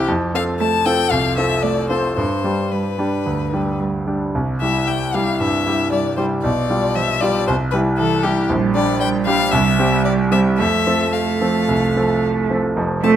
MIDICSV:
0, 0, Header, 1, 4, 480
1, 0, Start_track
1, 0, Key_signature, 0, "major"
1, 0, Tempo, 516351
1, 74, Time_signature, 4, 2, 24, 8
1, 1515, Tempo, 539568
1, 4875, Tempo, 516351
1, 7750, Key_signature, -1, "major"
1, 9195, Tempo, 542495
1, 11947, End_track
2, 0, Start_track
2, 0, Title_t, "Violin"
2, 0, Program_c, 0, 40
2, 327, Note_on_c, 0, 77, 66
2, 402, Note_off_c, 0, 77, 0
2, 557, Note_on_c, 0, 81, 64
2, 799, Note_on_c, 0, 79, 70
2, 813, Note_off_c, 0, 81, 0
2, 1028, Note_on_c, 0, 77, 62
2, 1042, Note_off_c, 0, 79, 0
2, 1266, Note_off_c, 0, 77, 0
2, 1272, Note_on_c, 0, 76, 55
2, 1512, Note_on_c, 0, 74, 57
2, 1526, Note_off_c, 0, 76, 0
2, 1744, Note_off_c, 0, 74, 0
2, 1750, Note_on_c, 0, 72, 46
2, 1990, Note_off_c, 0, 72, 0
2, 1997, Note_on_c, 0, 72, 52
2, 2487, Note_on_c, 0, 71, 39
2, 2501, Note_off_c, 0, 72, 0
2, 3449, Note_off_c, 0, 71, 0
2, 4167, Note_on_c, 0, 76, 56
2, 4404, Note_on_c, 0, 79, 51
2, 4417, Note_off_c, 0, 76, 0
2, 4646, Note_on_c, 0, 77, 57
2, 4659, Note_off_c, 0, 79, 0
2, 4872, Note_off_c, 0, 77, 0
2, 4877, Note_on_c, 0, 76, 52
2, 5347, Note_off_c, 0, 76, 0
2, 5351, Note_on_c, 0, 74, 45
2, 5581, Note_off_c, 0, 74, 0
2, 5586, Note_on_c, 0, 72, 46
2, 5661, Note_off_c, 0, 72, 0
2, 5826, Note_on_c, 0, 74, 56
2, 6313, Note_on_c, 0, 76, 59
2, 6327, Note_off_c, 0, 74, 0
2, 6550, Note_on_c, 0, 74, 66
2, 6564, Note_off_c, 0, 76, 0
2, 6791, Note_off_c, 0, 74, 0
2, 6796, Note_on_c, 0, 72, 50
2, 6871, Note_off_c, 0, 72, 0
2, 7017, Note_on_c, 0, 71, 60
2, 7091, Note_off_c, 0, 71, 0
2, 7262, Note_on_c, 0, 69, 59
2, 7504, Note_on_c, 0, 67, 51
2, 7518, Note_off_c, 0, 69, 0
2, 7746, Note_off_c, 0, 67, 0
2, 7982, Note_on_c, 0, 74, 68
2, 8204, Note_off_c, 0, 74, 0
2, 8220, Note_on_c, 0, 79, 68
2, 8295, Note_off_c, 0, 79, 0
2, 8456, Note_on_c, 0, 77, 77
2, 8694, Note_on_c, 0, 76, 67
2, 8708, Note_off_c, 0, 77, 0
2, 9182, Note_off_c, 0, 76, 0
2, 9188, Note_on_c, 0, 74, 56
2, 9259, Note_off_c, 0, 74, 0
2, 9428, Note_on_c, 0, 76, 57
2, 9499, Note_off_c, 0, 76, 0
2, 9665, Note_on_c, 0, 76, 67
2, 10149, Note_on_c, 0, 77, 48
2, 10162, Note_off_c, 0, 76, 0
2, 11118, Note_off_c, 0, 77, 0
2, 11835, Note_on_c, 0, 81, 54
2, 11906, Note_off_c, 0, 81, 0
2, 11947, End_track
3, 0, Start_track
3, 0, Title_t, "Grand piano"
3, 0, Program_c, 1, 0
3, 0, Control_c, 1, 64, 127
3, 0, Note_on_c, 1, 36, 48
3, 0, Note_on_c, 1, 60, 36
3, 0, Note_on_c, 1, 64, 35
3, 0, Note_on_c, 1, 67, 38
3, 75, Note_on_c, 1, 41, 52
3, 92, Control_c, 1, 64, 0
3, 94, Note_off_c, 1, 67, 0
3, 96, Note_off_c, 1, 36, 0
3, 99, Note_off_c, 1, 60, 0
3, 100, Note_off_c, 1, 64, 0
3, 226, Control_c, 1, 64, 127
3, 308, Note_off_c, 1, 41, 0
3, 318, Note_on_c, 1, 60, 33
3, 322, Note_on_c, 1, 65, 34
3, 324, Note_on_c, 1, 69, 36
3, 761, Note_off_c, 1, 60, 0
3, 762, Note_off_c, 1, 65, 0
3, 764, Note_off_c, 1, 69, 0
3, 795, Note_on_c, 1, 60, 40
3, 800, Note_on_c, 1, 65, 39
3, 803, Note_on_c, 1, 69, 39
3, 1009, Note_off_c, 1, 60, 0
3, 1011, Note_off_c, 1, 65, 0
3, 1013, Note_off_c, 1, 69, 0
3, 1034, Note_on_c, 1, 36, 37
3, 1265, Note_off_c, 1, 36, 0
3, 1277, Note_on_c, 1, 60, 33
3, 1283, Note_on_c, 1, 65, 33
3, 1283, Note_on_c, 1, 69, 34
3, 1721, Note_off_c, 1, 60, 0
3, 1724, Note_off_c, 1, 65, 0
3, 1724, Note_off_c, 1, 69, 0
3, 1756, Note_on_c, 1, 60, 29
3, 1757, Note_on_c, 1, 65, 26
3, 1763, Note_on_c, 1, 69, 31
3, 1973, Note_off_c, 1, 60, 0
3, 1974, Note_off_c, 1, 65, 0
3, 1978, Note_off_c, 1, 69, 0
3, 1998, Note_on_c, 1, 43, 42
3, 2017, Control_c, 1, 64, 0
3, 2181, Control_c, 1, 64, 127
3, 2234, Note_off_c, 1, 43, 0
3, 2237, Note_on_c, 1, 55, 27
3, 2239, Note_on_c, 1, 62, 25
3, 2245, Note_on_c, 1, 67, 26
3, 2686, Note_off_c, 1, 55, 0
3, 2687, Note_off_c, 1, 62, 0
3, 2690, Note_off_c, 1, 67, 0
3, 2719, Note_on_c, 1, 55, 24
3, 2725, Note_on_c, 1, 62, 26
3, 2726, Note_on_c, 1, 67, 27
3, 2939, Note_off_c, 1, 55, 0
3, 2942, Note_off_c, 1, 62, 0
3, 2943, Note_off_c, 1, 67, 0
3, 2965, Note_on_c, 1, 38, 29
3, 3200, Note_off_c, 1, 38, 0
3, 3205, Note_on_c, 1, 55, 22
3, 3209, Note_on_c, 1, 62, 25
3, 3211, Note_on_c, 1, 67, 26
3, 3653, Note_off_c, 1, 55, 0
3, 3655, Note_off_c, 1, 62, 0
3, 3656, Note_off_c, 1, 67, 0
3, 3684, Note_on_c, 1, 55, 24
3, 3688, Note_on_c, 1, 62, 25
3, 3689, Note_on_c, 1, 67, 26
3, 3904, Note_off_c, 1, 55, 0
3, 3907, Note_off_c, 1, 62, 0
3, 3907, Note_off_c, 1, 67, 0
3, 3935, Note_on_c, 1, 36, 40
3, 3947, Control_c, 1, 64, 0
3, 4085, Control_c, 1, 64, 127
3, 4165, Note_off_c, 1, 36, 0
3, 4173, Note_on_c, 1, 55, 27
3, 4177, Note_on_c, 1, 64, 26
3, 4183, Note_on_c, 1, 67, 31
3, 4607, Note_off_c, 1, 55, 0
3, 4609, Note_off_c, 1, 64, 0
3, 4612, Note_off_c, 1, 67, 0
3, 4640, Note_on_c, 1, 55, 31
3, 4643, Note_on_c, 1, 64, 30
3, 4647, Note_on_c, 1, 67, 36
3, 4851, Note_off_c, 1, 55, 0
3, 4852, Note_off_c, 1, 64, 0
3, 4854, Note_off_c, 1, 67, 0
3, 4872, Note_on_c, 1, 43, 34
3, 5107, Note_off_c, 1, 43, 0
3, 5113, Note_on_c, 1, 55, 27
3, 5116, Note_on_c, 1, 64, 30
3, 5123, Note_on_c, 1, 67, 33
3, 5559, Note_off_c, 1, 55, 0
3, 5560, Note_off_c, 1, 64, 0
3, 5564, Note_off_c, 1, 67, 0
3, 5588, Note_on_c, 1, 55, 31
3, 5591, Note_on_c, 1, 64, 28
3, 5595, Note_on_c, 1, 67, 35
3, 5809, Note_off_c, 1, 55, 0
3, 5811, Note_off_c, 1, 64, 0
3, 5812, Note_off_c, 1, 67, 0
3, 5833, Note_on_c, 1, 35, 44
3, 5856, Control_c, 1, 64, 0
3, 5992, Control_c, 1, 64, 127
3, 6068, Note_off_c, 1, 35, 0
3, 6075, Note_on_c, 1, 55, 30
3, 6080, Note_on_c, 1, 65, 31
3, 6083, Note_on_c, 1, 67, 30
3, 6522, Note_off_c, 1, 55, 0
3, 6524, Note_off_c, 1, 65, 0
3, 6526, Note_off_c, 1, 67, 0
3, 6556, Note_on_c, 1, 55, 34
3, 6561, Note_on_c, 1, 65, 37
3, 6565, Note_on_c, 1, 67, 40
3, 6773, Note_off_c, 1, 55, 0
3, 6776, Note_off_c, 1, 65, 0
3, 6778, Note_off_c, 1, 67, 0
3, 6801, Note_on_c, 1, 36, 47
3, 6818, Control_c, 1, 64, 0
3, 6991, Control_c, 1, 64, 127
3, 7029, Note_off_c, 1, 36, 0
3, 7037, Note_on_c, 1, 55, 35
3, 7042, Note_on_c, 1, 67, 37
3, 7043, Note_on_c, 1, 64, 36
3, 7475, Note_off_c, 1, 55, 0
3, 7478, Note_off_c, 1, 64, 0
3, 7478, Note_off_c, 1, 67, 0
3, 7508, Note_on_c, 1, 55, 36
3, 7514, Note_on_c, 1, 64, 35
3, 7514, Note_on_c, 1, 67, 39
3, 7724, Note_off_c, 1, 55, 0
3, 7727, Note_off_c, 1, 64, 0
3, 7727, Note_off_c, 1, 67, 0
3, 7746, Note_on_c, 1, 34, 49
3, 7765, Control_c, 1, 64, 0
3, 7925, Control_c, 1, 64, 127
3, 7977, Note_off_c, 1, 34, 0
3, 7984, Note_on_c, 1, 55, 36
3, 7989, Note_on_c, 1, 62, 40
3, 7991, Note_on_c, 1, 67, 38
3, 8424, Note_off_c, 1, 55, 0
3, 8426, Note_off_c, 1, 62, 0
3, 8428, Note_off_c, 1, 67, 0
3, 8468, Note_on_c, 1, 55, 40
3, 8469, Note_on_c, 1, 62, 42
3, 8472, Note_on_c, 1, 67, 49
3, 8681, Note_off_c, 1, 55, 0
3, 8682, Note_off_c, 1, 62, 0
3, 8684, Note_off_c, 1, 67, 0
3, 8704, Note_on_c, 1, 36, 58
3, 8720, Control_c, 1, 64, 0
3, 8892, Control_c, 1, 64, 127
3, 8939, Note_off_c, 1, 36, 0
3, 8949, Note_on_c, 1, 55, 38
3, 8953, Note_on_c, 1, 60, 37
3, 8955, Note_on_c, 1, 67, 42
3, 9397, Note_off_c, 1, 55, 0
3, 9399, Note_off_c, 1, 60, 0
3, 9400, Note_off_c, 1, 67, 0
3, 9426, Note_on_c, 1, 55, 31
3, 9431, Note_on_c, 1, 60, 35
3, 9434, Note_on_c, 1, 67, 35
3, 9642, Note_off_c, 1, 55, 0
3, 9645, Note_off_c, 1, 60, 0
3, 9647, Note_off_c, 1, 67, 0
3, 9667, Note_on_c, 1, 41, 42
3, 9687, Control_c, 1, 64, 0
3, 9816, Control_c, 1, 64, 127
3, 9900, Note_off_c, 1, 41, 0
3, 9911, Note_on_c, 1, 53, 27
3, 9914, Note_on_c, 1, 60, 28
3, 9920, Note_on_c, 1, 69, 34
3, 10360, Note_off_c, 1, 53, 0
3, 10362, Note_off_c, 1, 60, 0
3, 10364, Note_off_c, 1, 69, 0
3, 10395, Note_on_c, 1, 53, 28
3, 10400, Note_on_c, 1, 60, 30
3, 10402, Note_on_c, 1, 69, 31
3, 10614, Note_off_c, 1, 53, 0
3, 10616, Note_off_c, 1, 60, 0
3, 10617, Note_off_c, 1, 69, 0
3, 10637, Note_on_c, 1, 36, 36
3, 10871, Note_off_c, 1, 36, 0
3, 10880, Note_on_c, 1, 53, 28
3, 10883, Note_on_c, 1, 60, 25
3, 10889, Note_on_c, 1, 69, 29
3, 11325, Note_off_c, 1, 53, 0
3, 11327, Note_off_c, 1, 60, 0
3, 11329, Note_off_c, 1, 69, 0
3, 11359, Note_on_c, 1, 53, 25
3, 11362, Note_on_c, 1, 60, 27
3, 11363, Note_on_c, 1, 69, 25
3, 11575, Note_off_c, 1, 53, 0
3, 11576, Note_off_c, 1, 60, 0
3, 11577, Note_off_c, 1, 69, 0
3, 11596, Note_on_c, 1, 29, 42
3, 11596, Note_on_c, 1, 41, 46
3, 11618, Control_c, 1, 64, 0
3, 11773, Control_c, 1, 64, 127
3, 11827, Note_off_c, 1, 29, 0
3, 11827, Note_off_c, 1, 41, 0
3, 11830, Note_on_c, 1, 53, 34
3, 11834, Note_on_c, 1, 60, 31
3, 11840, Note_on_c, 1, 69, 33
3, 11947, Note_off_c, 1, 53, 0
3, 11947, Note_off_c, 1, 60, 0
3, 11947, Note_off_c, 1, 69, 0
3, 11947, End_track
4, 0, Start_track
4, 0, Title_t, "Cello"
4, 0, Program_c, 2, 42
4, 563, Note_on_c, 2, 57, 48
4, 915, Note_off_c, 2, 57, 0
4, 1519, Note_on_c, 2, 57, 47
4, 1875, Note_off_c, 2, 57, 0
4, 2484, Note_on_c, 2, 55, 33
4, 2843, Note_off_c, 2, 55, 0
4, 3445, Note_on_c, 2, 55, 36
4, 3807, Note_off_c, 2, 55, 0
4, 4402, Note_on_c, 2, 55, 36
4, 4753, Note_off_c, 2, 55, 0
4, 5347, Note_on_c, 2, 55, 41
4, 5710, Note_off_c, 2, 55, 0
4, 6315, Note_on_c, 2, 53, 39
4, 6675, Note_off_c, 2, 53, 0
4, 7274, Note_on_c, 2, 52, 54
4, 7628, Note_off_c, 2, 52, 0
4, 7752, Note_on_c, 2, 55, 42
4, 8191, Note_off_c, 2, 55, 0
4, 8222, Note_on_c, 2, 55, 49
4, 8692, Note_off_c, 2, 55, 0
4, 8699, Note_on_c, 2, 55, 55
4, 9665, Note_on_c, 2, 57, 41
4, 9678, Note_off_c, 2, 55, 0
4, 10145, Note_off_c, 2, 57, 0
4, 10151, Note_on_c, 2, 57, 43
4, 11392, Note_off_c, 2, 57, 0
4, 11818, Note_on_c, 2, 57, 64
4, 11947, Note_off_c, 2, 57, 0
4, 11947, End_track
0, 0, End_of_file